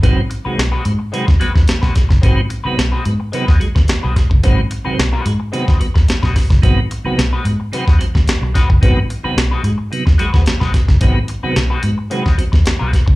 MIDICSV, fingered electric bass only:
0, 0, Header, 1, 3, 480
1, 0, Start_track
1, 0, Tempo, 548948
1, 29, Time_signature, 4, 2, 24, 8
1, 11504, End_track
2, 0, Start_track
2, 0, Title_t, "Fingered electric bass"
2, 0, Program_c, 0, 33
2, 30, Note_on_c, 0, 32, 114
2, 223, Note_off_c, 0, 32, 0
2, 508, Note_on_c, 0, 35, 101
2, 612, Note_off_c, 0, 35, 0
2, 748, Note_on_c, 0, 44, 95
2, 852, Note_off_c, 0, 44, 0
2, 1120, Note_on_c, 0, 39, 87
2, 1211, Note_off_c, 0, 39, 0
2, 1358, Note_on_c, 0, 39, 88
2, 1450, Note_off_c, 0, 39, 0
2, 1599, Note_on_c, 0, 35, 80
2, 1691, Note_off_c, 0, 35, 0
2, 1840, Note_on_c, 0, 30, 85
2, 1932, Note_off_c, 0, 30, 0
2, 1952, Note_on_c, 0, 32, 117
2, 2147, Note_off_c, 0, 32, 0
2, 2432, Note_on_c, 0, 35, 99
2, 2537, Note_off_c, 0, 35, 0
2, 2673, Note_on_c, 0, 44, 99
2, 2777, Note_off_c, 0, 44, 0
2, 3043, Note_on_c, 0, 39, 84
2, 3135, Note_off_c, 0, 39, 0
2, 3287, Note_on_c, 0, 39, 100
2, 3377, Note_off_c, 0, 39, 0
2, 3533, Note_on_c, 0, 35, 95
2, 3621, Note_off_c, 0, 35, 0
2, 3770, Note_on_c, 0, 30, 89
2, 3859, Note_off_c, 0, 30, 0
2, 3877, Note_on_c, 0, 32, 123
2, 4071, Note_off_c, 0, 32, 0
2, 4359, Note_on_c, 0, 35, 104
2, 4461, Note_off_c, 0, 35, 0
2, 4598, Note_on_c, 0, 44, 99
2, 4701, Note_off_c, 0, 44, 0
2, 4969, Note_on_c, 0, 39, 92
2, 5059, Note_off_c, 0, 39, 0
2, 5205, Note_on_c, 0, 39, 86
2, 5296, Note_off_c, 0, 39, 0
2, 5449, Note_on_c, 0, 35, 90
2, 5539, Note_off_c, 0, 35, 0
2, 5687, Note_on_c, 0, 30, 86
2, 5778, Note_off_c, 0, 30, 0
2, 5799, Note_on_c, 0, 32, 127
2, 5992, Note_off_c, 0, 32, 0
2, 6279, Note_on_c, 0, 35, 108
2, 6381, Note_off_c, 0, 35, 0
2, 6513, Note_on_c, 0, 44, 95
2, 6618, Note_off_c, 0, 44, 0
2, 6885, Note_on_c, 0, 39, 82
2, 6976, Note_off_c, 0, 39, 0
2, 7128, Note_on_c, 0, 39, 86
2, 7217, Note_off_c, 0, 39, 0
2, 7358, Note_on_c, 0, 35, 87
2, 7451, Note_off_c, 0, 35, 0
2, 7604, Note_on_c, 0, 30, 81
2, 7695, Note_off_c, 0, 30, 0
2, 7719, Note_on_c, 0, 32, 109
2, 7910, Note_off_c, 0, 32, 0
2, 8189, Note_on_c, 0, 35, 110
2, 8294, Note_off_c, 0, 35, 0
2, 8426, Note_on_c, 0, 44, 104
2, 8532, Note_off_c, 0, 44, 0
2, 8802, Note_on_c, 0, 39, 85
2, 8892, Note_off_c, 0, 39, 0
2, 9041, Note_on_c, 0, 39, 93
2, 9131, Note_off_c, 0, 39, 0
2, 9280, Note_on_c, 0, 35, 94
2, 9371, Note_off_c, 0, 35, 0
2, 9518, Note_on_c, 0, 30, 81
2, 9609, Note_off_c, 0, 30, 0
2, 9628, Note_on_c, 0, 32, 120
2, 9822, Note_off_c, 0, 32, 0
2, 10110, Note_on_c, 0, 35, 111
2, 10212, Note_off_c, 0, 35, 0
2, 10349, Note_on_c, 0, 44, 96
2, 10451, Note_off_c, 0, 44, 0
2, 10721, Note_on_c, 0, 39, 97
2, 10810, Note_off_c, 0, 39, 0
2, 10955, Note_on_c, 0, 39, 102
2, 11046, Note_off_c, 0, 39, 0
2, 11201, Note_on_c, 0, 35, 86
2, 11289, Note_off_c, 0, 35, 0
2, 11434, Note_on_c, 0, 30, 87
2, 11504, Note_off_c, 0, 30, 0
2, 11504, End_track
3, 0, Start_track
3, 0, Title_t, "Muted fingered electric bass strokes"
3, 398, Note_on_c, 9, 29, 45
3, 485, Note_off_c, 9, 29, 0
3, 1475, Note_on_c, 9, 29, 48
3, 1562, Note_off_c, 9, 29, 0
3, 2317, Note_on_c, 9, 29, 47
3, 2405, Note_off_c, 9, 29, 0
3, 3405, Note_on_c, 9, 29, 49
3, 3493, Note_off_c, 9, 29, 0
3, 4253, Note_on_c, 9, 29, 45
3, 4341, Note_off_c, 9, 29, 0
3, 5321, Note_on_c, 9, 29, 44
3, 5408, Note_off_c, 9, 29, 0
3, 6161, Note_on_c, 9, 29, 43
3, 6249, Note_off_c, 9, 29, 0
3, 7237, Note_on_c, 9, 29, 47
3, 7325, Note_off_c, 9, 29, 0
3, 8083, Note_on_c, 9, 29, 44
3, 8170, Note_off_c, 9, 29, 0
3, 9153, Note_on_c, 9, 29, 46
3, 9241, Note_off_c, 9, 29, 0
3, 9995, Note_on_c, 9, 29, 45
3, 10083, Note_off_c, 9, 29, 0
3, 11077, Note_on_c, 9, 29, 51
3, 11164, Note_off_c, 9, 29, 0
3, 11504, End_track
0, 0, End_of_file